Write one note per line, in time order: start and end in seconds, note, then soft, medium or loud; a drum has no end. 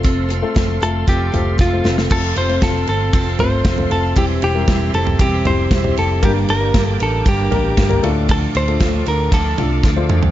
0.00 0.42 F1 loud
0.00 0.52 C3 medium
0.00 0.30 F3 medium
0.00 0.40 A3 medium
0.00 0.40 C4 medium
0.00 0.40 F4 medium
0.00 0.40 A4 medium
0.00 2.09 A4 medium
0.00 2.07 F5 medium
0.00 2.08 C6 medium
0.04 0.30 C4 loud
0.04 0.30 F4 loud
0.04 0.27 A4 loud
0.04 kick loud
0.04 closed hi-hat medium
0.29 0.54 C4 medium
0.29 0.56 F4 medium
0.29 0.55 A4 medium
0.29 closed hi-hat medium
0.42 0.79 A3 medium
0.42 0.79 C4 medium
0.42 0.80 F4 medium
0.42 0.79 A4 loud
0.54 0.77 F1 medium
0.54 0.81 F3 medium
0.54 0.82 C4 medium
0.54 0.81 F4 medium
0.54 0.79 A4 medium
0.54 kick loud
0.54 snare loud
0.54 closed hi-hat medium
0.81 1.03 F1 medium
0.81 1.31 A3 medium
0.81 1.31 C4 medium
0.81 1.07 C4 medium
0.81 1.31 F4 medium
0.81 1.08 F4 medium
0.81 1.07 A4 medium
0.81 1.31 A4 medium
0.81 closed hi-hat medium
1.07 1.29 F1 loud
1.07 1.33 F3 medium
1.07 1.34 C4 loud
1.07 1.33 F4 medium
1.07 1.56 G4 loud
1.07 1.31 A4 medium
1.07 kick loud
1.07 closed hi-hat medium
1.32 1.54 F1 loud
1.32 1.70 A3 medium
1.32 1.70 C4 medium
1.32 1.58 C4 soft
1.32 1.70 F4 medium
1.32 1.60 F4 medium
1.32 1.59 A4 medium
1.32 1.70 A4 medium
1.32 closed hi-hat medium
1.32 floor tom medium
1.58 1.80 F1 loud
1.58 1.84 F3 medium
1.58 1.85 C4 medium
1.58 1.85 F4 medium
1.58 1.83 A4 medium
1.58 kick loud
1.58 snare medium
1.73 2.09 A3 medium
1.73 2.09 C4 medium
1.73 2.09 F4 medium
1.73 2.09 C5 medium
1.84 2.06 F1 loud
1.84 2.09 C4 medium
1.84 2.10 F4 medium
1.84 2.10 A4 medium
1.84 snare medium
1.98 snare medium
2.10 2.32 F1 medium
2.10 2.84 C3 medium
2.10 2.36 F3 medium
2.10 2.47 A3 medium
2.10 2.36 C4 loud
2.10 2.48 C4 medium
2.10 2.47 F4 medium
2.10 2.36 F4 loud
2.10 4.14 A4 medium
2.10 2.48 A4 medium
2.10 2.34 A4 loud
2.10 4.15 F5 medium
2.10 6.18 C6 medium
2.10 kick loud
2.10 crash medium
2.35 2.58 F1 medium
2.35 2.61 C4 medium
2.35 2.62 F4 medium
2.35 2.62 A4 medium
2.35 2.63 C5 medium
2.35 ride medium
2.49 3.34 A3 medium
2.49 3.34 C4 medium
2.49 3.34 F4 medium
2.49 3.35 C5 medium
2.49 ride soft
2.61 2.83 F1 medium
2.61 2.87 F3 medium
2.61 2.88 C4 medium
2.61 2.88 F4 medium
2.61 2.86 A4 medium
2.61 kick loud
2.61 snare loud
2.61 ride medium
2.87 3.09 G1 medium
2.87 3.13 C4 soft
2.87 3.13 F4 medium
2.87 3.13 A4 medium
2.87 ride medium
3.13 3.35 F1 loud
3.13 3.39 F3 medium
3.13 3.40 C4 loud
3.13 3.40 F4 loud
3.13 3.38 A4 loud
3.13 kick loud
3.13 ride medium
3.39 3.60 G1 medium
3.39 3.76 A3 medium
3.39 3.76 C4 medium
3.39 3.64 C4 medium
3.39 3.76 F4 medium
3.39 3.66 F4 medium
3.39 3.65 A4 medium
3.39 3.76 C5 medium
3.39 3.91 C5 loud
3.39 floor tom medium
3.39 ride medium
3.64 3.86 F1 medium
3.64 3.91 F3 medium
3.64 3.91 C4 medium
3.64 3.91 F4 medium
3.64 3.89 A4 medium
3.64 kick loud
3.64 snare loud
3.64 ride medium
3.78 4.15 A3 medium
3.78 4.15 C4 medium
3.78 4.15 F4 medium
3.78 4.14 A4 medium
3.78 floor tom medium
3.90 4.12 F1 medium
3.90 4.16 C4 soft
3.90 4.17 F4 medium
3.90 4.16 A4 medium
3.90 ride medium
4.15 4.38 E1 loud
4.15 4.42 E3 medium
4.15 4.90 E3 medium
4.15 4.53 G3 medium
4.15 4.43 G3 loud
4.15 4.53 C4 medium
4.15 4.43 C4 loud
4.15 4.53 E4 medium
4.15 4.42 E4 loud
4.15 6.20 G4 medium
4.15 4.53 G4 medium
4.15 4.40 G4 loud
4.15 6.20 E5 medium
4.15 kick loud
4.15 ride medium
4.41 4.64 E1 loud
4.41 4.68 C4 soft
4.41 4.69 E4 medium
4.41 4.68 G4 medium
4.41 ride medium
4.55 5.40 G3 medium
4.55 5.40 C4 medium
4.55 5.40 E4 medium
4.55 5.40 A#4 medium
4.67 4.89 E1 medium
4.67 4.94 G3 medium
4.67 4.94 C4 medium
4.67 4.94 E4 medium
4.67 4.92 G4 medium
4.67 kick loud
4.67 snare loud
4.67 ride medium
4.93 5.15 F1 medium
4.93 5.20 C4 medium
4.93 5.20 E4 medium
4.93 5.20 G4 medium
4.93 5.21 A4 medium
4.93 ride medium
5.07 floor tom medium
5.19 5.41 E1 loud
5.19 5.45 E3 medium
5.19 5.46 G3 loud
5.19 5.46 C4 loud
5.19 5.46 E4 loud
5.19 5.44 G4 loud
5.19 kick loud
5.19 ride medium
5.45 5.67 F1 loud
5.45 5.82 G3 medium
5.45 5.82 C4 medium
5.45 5.71 C4 soft
5.45 5.82 E4 medium
5.45 5.72 E4 medium
5.45 5.71 G4 medium
5.45 5.82 G4 medium
5.45 5.98 C5 loud
5.45 floor tom medium
5.45 ride medium
5.71 5.92 E1 loud
5.71 5.97 G3 medium
5.71 5.98 C4 medium
5.71 5.97 E4 medium
5.71 5.95 G4 medium
5.71 kick loud
5.71 snare loud
5.71 ride medium
5.83 6.20 G3 medium
5.83 6.20 C4 medium
5.83 6.20 E4 medium
5.83 6.20 G4 medium
5.83 floor tom medium
5.96 6.23 F1 loud
5.96 6.23 C4 medium
5.96 6.24 E4 medium
5.96 6.23 G4 medium
5.96 6.25 A4 medium
5.96 ride medium
6.22 6.44 G1 loud
6.22 6.96 G2 medium
6.22 6.49 G2 loud
6.22 6.96 D3 medium
6.22 6.49 D3 medium
6.22 6.49 G3 loud
6.22 6.59 A#3 medium
6.22 6.49 A#3 loud
6.22 6.59 D4 medium
6.22 6.48 D4 loud
6.22 6.59 G4 medium
6.22 6.32 G4 loud
6.22 6.59 A#4 medium
6.22 8.01 A#4 medium
6.22 6.47 A#4 loud
6.22 8.02 G5 medium
6.22 10.31 D6 medium
6.22 kick loud
6.22 ride medium
6.48 6.70 G1 medium
6.48 6.73 G3 medium
6.48 6.74 A#3 medium
6.48 6.75 D4 medium
6.48 6.74 A#4 medium
6.48 ride medium
6.60 7.46 A#3 medium
6.60 7.46 D4 medium
6.60 7.46 G4 medium
6.60 7.46 A#4 medium
6.74 6.95 G1 loud
6.74 7.00 G3 medium
6.74 7.01 A#3 medium
6.74 7.00 D4 medium
6.74 6.98 A#4 medium
6.74 kick loud
6.74 snare loud
6.74 ride medium
6.85 6.97 A4 medium
6.99 7.21 A1 medium
6.99 7.25 G3 medium
6.99 7.26 A#3 medium
6.99 7.26 D4 medium
6.99 7.28 A4 medium
6.99 7.26 A#4 medium
6.99 ride medium
7.25 7.47 G1 loud
7.25 7.52 G2 loud
7.25 7.52 D3 medium
7.25 7.52 G3 loud
7.25 7.52 A#3 loud
7.25 7.51 D4 loud
7.25 8.01 G4 medium
7.25 7.50 A#4 loud
7.25 kick loud
7.25 ride medium
7.51 7.73 A1 medium
7.51 7.76 G3 soft
7.51 7.88 A#3 medium
7.51 7.77 A#3 medium
7.51 7.88 D4 medium
7.51 7.78 D4 medium
7.51 7.88 G4 medium
7.51 7.77 A#4 medium
7.51 7.88 A#4 medium
7.51 floor tom medium
7.51 ride medium
7.77 7.99 G1 medium
7.77 8.03 G3 medium
7.77 8.04 A#3 medium
7.77 8.04 D4 medium
7.77 8.03 A#4 medium
7.77 kick loud
7.77 snare loud
7.77 ride medium
7.89 8.03 A#3 medium
7.89 8.01 D4 medium
7.89 8.03 G4 medium
7.89 8.03 A#4 medium
7.89 floor tom medium
8.03 8.46 D2 loud
8.03 8.76 A2 medium
8.03 8.64 A3 loud
8.03 8.64 D4 medium
8.03 8.29 D4 medium
8.03 8.64 F4 medium
8.03 8.29 F4 medium
8.03 8.64 A4 loud
8.03 10.31 A4 medium
8.03 8.29 A4 medium
8.03 10.31 F5 medium
8.03 ride medium
8.29 8.55 D3 medium
8.29 8.55 F3 medium
8.29 8.55 D4 medium
8.29 8.55 F4 loud
8.29 8.53 A4 loud
8.29 kick loud
8.29 ride medium
8.55 8.76 D2 medium
8.55 8.80 D4 medium
8.55 8.81 F4 medium
8.55 8.81 A4 medium
8.55 9.08 C5 loud
8.55 ride medium
8.68 9.53 A3 medium
8.68 9.53 D4 medium
8.68 9.53 F4 medium
8.68 9.53 A4 medium
8.68 ride soft
8.80 9.02 D2 medium
8.80 9.06 F3 medium
8.80 9.07 D4 medium
8.80 9.06 F4 medium
8.80 9.04 A4 medium
8.80 kick loud
8.80 snare loud
8.80 ride medium
9.06 9.28 D2 medium
9.06 9.32 D4 medium
9.06 9.33 F4 medium
9.06 9.32 A4 medium
9.06 9.33 A#4 medium
9.06 ride medium
9.32 9.53 D2 loud
9.32 9.58 D3 medium
9.32 9.58 F3 loud
9.32 9.59 D4 loud
9.32 9.58 F4 medium
9.32 9.56 A4 loud
9.32 kick loud
9.32 ride medium
9.58 9.80 C2 medium
9.58 9.95 A3 medium
9.58 9.95 D4 medium
9.58 9.83 D4 soft
9.58 9.94 F4 medium
9.58 9.84 F4 medium
9.58 9.84 A4 medium
9.58 9.95 A4 medium
9.58 floor tom medium
9.58 ride medium
9.83 10.11 D2 loud
9.83 10.09 F3 medium
9.83 10.10 D4 medium
9.83 10.10 F4 medium
9.83 10.08 A4 medium
9.83 kick loud
9.83 snare medium
9.96 10.31 A3 medium
9.96 10.31 D4 medium
9.96 10.31 F4 medium
9.96 10.31 C5 medium
10.09 10.31 E2 medium
10.09 10.31 D4 soft
10.09 10.31 F4 medium
10.09 10.31 A4 medium
10.09 mid tom medium
10.23 floor tom medium